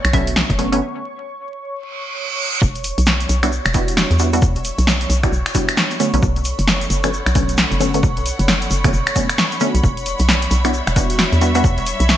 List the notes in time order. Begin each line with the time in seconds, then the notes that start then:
Already playing: C#5 C#6
0.05 B1, finger snap, closed hi-hat
0.13 D3 F#3 A3 B3 C#4 E5, kick, open hi-hat
0.27 closed hi-hat
0.36 snare
0.50 F#1, kick, closed hi-hat
0.58 D3 F#3 A3 B3 C#4, open hi-hat
0.72 D3 F#3 A3 B3 C#4, closed hi-hat
1.71 reverse cymbal
2.62 E1 D4 C#5 C#6, kick, shaker
2.68 G3
2.75 closed hi-hat, shaker
2.84 open hi-hat, shaker
2.91 E5
2.98 B1, closed hi-hat, shaker
3.06 snare, shaker
3.20 B5, closed hi-hat, shaker
3.29 B1, open hi-hat, shaker
3.43 G3 B3 D4 E4 F#4, finger snap, closed hi-hat, shaker
3.52 shaker
3.65 E1, finger snap, closed hi-hat, shaker
3.74 G3 B3 D4 E4 F#4, kick, open hi-hat, shaker
3.88 closed hi-hat, shaker
3.97 snare, shaker
4.11 E2, closed hi-hat, shaker
4.19 G3 B3 D4 E4 F#4, open hi-hat, shaker
4.33 G3 B3 D4 E4 F#4, closed hi-hat, shaker
4.42 kick, shaker
4.56 E1, closed hi-hat, shaker
4.65 open hi-hat, shaker
4.78 B1, closed hi-hat, shaker
4.87 snare, shaker
5.01 closed hi-hat, shaker
5.10 B1, open hi-hat, shaker
5.23 G3 B3 D4 E4 F#4, finger snap, kick, closed hi-hat, shaker
5.32 B1, shaker
5.46 finger snap, closed hi-hat, shaker
5.55 G3 B3 D4 E4 F#4, kick, open hi-hat, shaker
5.68 finger snap, closed hi-hat, shaker
5.77 snare, shaker
5.91 closed hi-hat, shaker
6.00 D3 F#3 A3 B3 C#4, open hi-hat, shaker
6.05 A4
6.14 B1 D3 F#3 A3 B3 C#4, closed hi-hat, shaker
6.22 B1, kick, shaker
6.36 closed hi-hat, shaker
6.43 F#5, open hi-hat, shaker
6.59 F#1, closed hi-hat, shaker
6.67 snare, shaker
6.81 closed hi-hat, shaker
6.90 F#1, open hi-hat, shaker
7.04 D3 F#3 A3 B3 C#4, finger snap, closed hi-hat, shaker
7.13 shaker
7.26 B1, finger snap, closed hi-hat, shaker
7.35 D3 F#3 A3 B3 C#4, kick, open hi-hat, shaker
7.49 closed hi-hat, shaker
7.57 snare, shaker
7.71 F#1, closed hi-hat, shaker
7.80 D3 F#3 A3 B3 C#4, open hi-hat, shaker
7.94 D3 F#3 A3 B3 C#4, closed hi-hat, shaker
8.03 kick, shaker
8.17 B1, closed hi-hat, shaker
8.26 open hi-hat, shaker
8.39 F#1, closed hi-hat, shaker
8.48 snare, shaker
8.62 closed hi-hat, shaker
8.71 F#1, open hi-hat, shaker
8.84 D3 F#3 A3 B3 C#4, finger snap, kick, closed hi-hat, shaker
8.93 F#1, shaker
9.07 finger snap, closed hi-hat, shaker
9.16 D3 F#3 A3 B3 C#4, kick, open hi-hat, shaker
9.30 finger snap, closed hi-hat, shaker
9.38 snare, shaker
9.52 closed hi-hat, shaker
9.60 D3 F#3 A3 B3 C#4, open hi-hat, shaker
9.75 B1, closed hi-hat, shaker
9.83 E1, kick, shaker
9.97 closed hi-hat, shaker
10.02 G3
10.06 open hi-hat, shaker
10.15 E5, shaker
10.20 B1, closed hi-hat
10.29 snare, shaker
10.42 closed hi-hat, shaker
10.51 B1, open hi-hat, shaker
10.65 G3 B3 D4 E4 F#4, finger snap, closed hi-hat, shaker
10.74 shaker
10.87 E1, finger snap, closed hi-hat, shaker
10.96 G3 B3 D4 E4 F#4, kick, open hi-hat, shaker
11.10 closed hi-hat, shaker
11.19 snare, shaker
11.32 E2, closed hi-hat, shaker
11.41 G3 B3 D4 E4 F#4, open hi-hat, shaker
11.55 G3 B3 D4 E4 F#4, closed hi-hat, shaker
11.64 kick, shaker
11.78 E1, closed hi-hat, shaker
11.86 open hi-hat, shaker
12.00 B1, closed hi-hat, shaker
12.09 snare, shaker